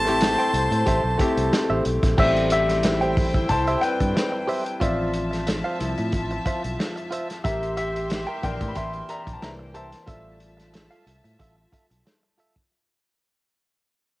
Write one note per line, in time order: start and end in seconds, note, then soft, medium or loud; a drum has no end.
0.00 0.35 A1 medium
0.00 0.05 A3 medium
0.00 0.06 C4 medium
0.00 0.07 E4 medium
0.00 0.08 G4 medium
0.00 1.82 C5 medium
0.00 1.82 A5 loud
0.00 1.82 C6 loud
0.05 1.14 A3 medium
0.05 1.14 C4 medium
0.05 1.15 E4 medium
0.05 1.15 G4 medium
0.05 muted clean electric guitar stroke soft
0.05 closed hi-hat soft
0.21 muted clean electric guitar stroke soft
0.21 snare loud
0.21 closed hi-hat medium
0.39 0.53 G4 medium
0.39 0.53 C5 medium
0.39 0.52 G5 medium
0.39 closed hi-hat soft
0.53 0.67 C2 medium
0.53 muted clean electric guitar stroke soft
0.53 closed hi-hat medium
0.71 0.83 A2 medium
0.71 muted clean electric guitar stroke soft
0.71 closed hi-hat soft
0.86 1.00 A1 medium
0.86 1.02 G4 medium
0.86 1.02 C5 medium
0.86 1.03 E5 medium
0.86 kick medium
0.86 closed hi-hat medium
1.04 1.16 B1 medium
1.18 2.13 A3 medium
1.18 2.13 C4 medium
1.18 2.14 E4 medium
1.18 1.31 G4 soft
1.18 2.14 G4 medium
1.18 1.32 C5 medium
1.18 1.33 E5 medium
1.18 kick medium
1.18 closed hi-hat medium
1.37 1.49 C2 medium
1.37 muted clean electric guitar stroke soft
1.37 closed hi-hat medium
1.52 muted clean electric guitar stroke soft
1.52 snare medium
1.52 closed hi-hat medium
1.70 1.82 A1 medium
1.70 1.84 G4 medium
1.70 1.84 C5 medium
1.70 1.83 E5 medium
1.85 1.99 B1 medium
1.85 muted clean electric guitar stroke soft
1.85 closed hi-hat medium
2.03 2.15 A#1 medium
2.03 muted clean electric guitar stroke soft
2.03 kick medium
2.03 snare soft
2.03 closed hi-hat medium
2.18 3.46 A1 loud
2.18 3.80 G3 soft
2.18 4.78 A3 soft
2.18 3.82 C4 medium
2.18 4.77 E4 medium
2.18 2.49 G4 medium
2.18 2.50 G4 medium
2.18 4.77 C5 medium
2.18 2.49 C5 medium
2.18 2.51 E5 medium
2.18 2.50 E5 medium
2.18 4.77 G5 medium
2.18 kick loud
2.18 crash medium
2.37 closed hi-hat soft
2.50 3.47 G4 medium
2.50 3.53 E5 loud
2.50 closed hi-hat medium
2.69 muted clean electric guitar stroke soft
2.69 snare soft
2.69 closed hi-hat soft
2.83 muted clean electric guitar stroke soft
2.83 snare loud
2.83 closed hi-hat medium
3.01 3.15 G4 medium
3.01 3.15 C5 medium
3.01 3.15 G5 medium
3.01 closed hi-hat soft
3.17 kick loud
3.17 open hi-hat medium
3.34 muted clean electric guitar stroke soft
3.34 kick medium
3.34 closed hi-hat soft
3.49 3.75 C2 medium
3.49 3.81 C5 medium
3.49 3.83 A5 loud
3.49 muted clean electric guitar stroke soft
3.49 kick medium
3.49 closed hi-hat medium
3.67 3.82 G4 medium
3.67 3.82 C5 medium
3.67 3.81 E5 medium
3.67 closed hi-hat soft
3.81 4.12 G3 soft
3.81 4.13 C4 medium
3.81 4.78 B4 medium
3.81 4.84 G5 loud
3.81 closed hi-hat medium
4.00 4.12 G2 medium
4.00 muted clean electric guitar stroke soft
4.00 kick medium
4.00 closed hi-hat medium
4.15 muted clean electric guitar stroke soft
4.15 snare loud
4.15 closed hi-hat medium
4.32 muted clean electric guitar stroke soft
4.48 4.64 G4 medium
4.48 4.64 C5 medium
4.48 4.64 E5 medium
4.48 open hi-hat medium
4.65 muted clean electric guitar stroke soft
4.65 closed hi-hat medium
4.80 5.61 A1 medium
4.80 5.76 F3 soft
4.80 5.76 C4 medium
4.80 5.11 F4 medium
4.80 6.75 F4 medium
4.80 7.41 F4 medium
4.80 5.12 C5 medium
4.80 6.74 D5 medium
4.80 5.76 E5 medium
4.80 7.41 E5 medium
4.80 5.12 E5 medium
4.80 7.41 A5 medium
4.80 kick loud
4.80 closed hi-hat medium
5.13 closed hi-hat medium
5.31 muted clean electric guitar stroke soft
5.31 snare soft
5.31 closed hi-hat soft
5.47 muted clean electric guitar stroke soft
5.47 snare loud
5.47 closed hi-hat medium
5.64 5.79 F4 medium
5.64 5.79 C5 medium
5.64 5.78 F5 medium
5.79 5.94 C2 medium
5.79 6.09 F3 medium
5.79 6.09 C4 soft
5.79 6.10 E4 medium
5.79 muted clean electric guitar stroke soft
5.79 closed hi-hat medium
5.98 6.15 A2 medium
5.98 muted clean electric guitar stroke soft
5.98 closed hi-hat soft
6.12 6.38 A1 medium
6.12 kick medium
6.12 closed hi-hat medium
6.31 muted clean electric guitar stroke soft
6.31 closed hi-hat soft
6.45 6.61 F4 medium
6.45 6.62 C5 medium
6.45 6.62 E5 medium
6.45 kick medium
6.45 closed hi-hat medium
6.63 6.76 B1 medium
6.63 muted clean electric guitar stroke soft
6.63 closed hi-hat medium
6.78 muted clean electric guitar stroke soft
6.78 snare loud
6.78 closed hi-hat medium
6.96 muted clean electric guitar stroke soft
6.96 closed hi-hat soft
7.11 7.27 F4 medium
7.11 7.27 C5 medium
7.11 7.28 E5 medium
7.11 closed hi-hat medium
7.29 muted clean electric guitar stroke soft
7.29 snare soft
7.29 closed hi-hat medium
7.44 8.24 A1 loud
7.44 7.75 G4 medium
7.44 9.38 G4 medium
7.44 7.76 G4 medium
7.44 7.76 A#4 medium
7.44 7.76 E5 medium
7.44 9.38 E5 medium
7.44 7.76 E5 medium
7.44 9.38 C6 loud
7.44 kick loud
7.44 closed hi-hat medium
7.63 closed hi-hat soft
7.77 8.40 G4 medium
7.77 8.45 E5 loud
7.77 closed hi-hat medium
7.95 muted clean electric guitar stroke soft
7.95 closed hi-hat soft
8.10 muted clean electric guitar stroke soft
8.10 snare loud
8.10 closed hi-hat medium
8.27 8.42 G4 medium
8.27 8.41 A#4 medium
8.27 8.41 G5 medium
8.43 8.57 A#1 medium
8.43 9.38 E3 medium
8.43 9.38 A#3 medium
8.43 9.38 D4 medium
8.43 8.68 A#4 medium
8.43 8.71 G5 medium
8.43 muted clean electric guitar stroke soft
8.43 kick medium
8.43 closed hi-hat medium
8.61 8.72 A2 loud
8.61 muted clean electric guitar stroke soft
8.61 kick medium
8.61 closed hi-hat soft
8.68 8.75 B5 medium
8.75 9.01 A1 medium
8.75 8.91 G4 medium
8.75 8.92 A#4 medium
8.75 9.07 E5 medium
8.75 8.92 E5 medium
8.75 9.10 C6 loud
8.75 kick medium
8.75 closed hi-hat medium
8.93 muted clean electric guitar stroke soft
8.93 closed hi-hat soft
9.09 9.21 G4 soft
9.09 9.22 A#4 medium
9.09 9.34 D5 medium
9.09 9.22 E5 medium
9.09 9.34 A#5 medium
9.09 closed hi-hat medium
9.26 9.38 A#1 medium
9.26 muted clean electric guitar stroke soft
9.26 kick medium
9.26 closed hi-hat medium
9.34 9.41 A5 medium
9.41 9.92 C2 medium
9.41 10.04 E3 soft
9.41 10.04 A#3 soft
9.41 10.05 D4 medium
9.41 10.06 E4 medium
9.41 10.06 C5 medium
9.41 9.50 E5 medium
9.41 10.06 G5 medium
9.41 9.50 A#5 medium
9.41 muted clean electric guitar stroke soft
9.41 snare medium
9.41 closed hi-hat medium
9.59 muted clean electric guitar stroke soft
9.74 9.90 G4 medium
9.74 9.91 A#4 medium
9.74 12.01 C5 medium
9.74 9.90 E5 medium
9.74 12.01 A5 medium
9.74 closed hi-hat medium
9.92 snare soft
9.92 closed hi-hat medium
10.06 10.88 A1 medium
10.06 12.67 G3 medium
10.06 12.67 A3 soft
10.06 10.38 F4 medium
10.06 12.67 F4 medium
10.06 10.38 A4 medium
10.06 12.67 E5 medium
10.06 10.39 E5 medium
10.06 12.67 A5 medium
10.06 kick loud
10.06 closed hi-hat medium
10.40 closed hi-hat medium
10.57 muted clean electric guitar stroke soft
10.57 snare soft
10.57 closed hi-hat soft
10.73 muted clean electric guitar stroke soft
10.73 snare loud
10.73 closed hi-hat medium
10.91 11.05 F4 soft
10.91 11.05 A4 medium
10.91 11.04 F5 medium
10.91 closed hi-hat soft
11.06 11.20 C2 medium
11.06 muted clean electric guitar stroke soft
11.06 closed hi-hat medium
11.24 11.36 A2 medium
11.24 muted clean electric guitar stroke soft
11.24 closed hi-hat soft
11.39 11.65 A1 medium
11.39 11.55 F4 medium
11.39 11.55 A4 medium
11.39 11.56 E5 medium
11.39 kick medium
11.39 closed hi-hat medium
11.72 11.84 F4 medium
11.72 11.85 A4 medium
11.72 11.85 E5 medium
11.72 kick medium
11.72 closed hi-hat medium
11.90 12.02 B1 medium
11.90 muted clean electric guitar stroke soft
11.90 closed hi-hat medium
12.06 muted clean electric guitar stroke soft
12.06 snare medium
12.06 closed hi-hat medium
12.23 muted clean electric guitar stroke soft
12.38 12.54 F4 medium
12.38 12.54 A4 medium
12.38 12.55 E5 medium
12.38 closed hi-hat medium
12.56 kick medium
12.56 closed hi-hat soft